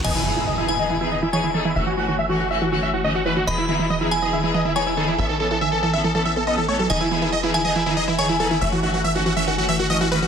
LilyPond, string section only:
\new Staff \with { instrumentName = "String section" } { \time 4/4 \key e \major \tempo 4 = 140 <e b dis' gis'>8 <e b dis' gis'>8 r16 <e b dis' gis'>8 <e b dis' gis'>8 <e b dis' gis'>8 r16 <e b dis' gis'>8 <e b dis' gis'>8 | <e a cis' fis'>8 <e a cis' fis'>8 r16 <e a cis' fis'>8 <e a cis' fis'>8 <e a cis' fis'>8 r16 <e a cis' fis'>8 <e a cis' fis'>8 | <e b dis' gis'>8 <e b dis' gis'>8 r16 <e b dis' gis'>8 <e b dis' gis'>8 <e b dis' gis'>8 r16 <e b dis' gis'>8 <e b dis' gis'>8 | <e b cis' a'>8 <e b cis' a'>8 r16 <e b cis' a'>8 <e b cis' a'>8 <e b cis' a'>8 r16 <e b cis' a'>8 <e b cis' a'>8 |
<e b dis' gis'>8 <e b dis' gis'>8 r16 <e b dis' gis'>8 <e b dis' gis'>8 <e b dis' gis'>8 r16 <e b dis' gis'>8 <e b dis' gis'>8 | <e a cis' fis'>8 <e a cis' fis'>8 r16 <e a cis' fis'>8 <e a cis' fis'>8 <e a cis' fis'>8 r16 <e a cis' fis'>8 <e a cis' fis'>8 | }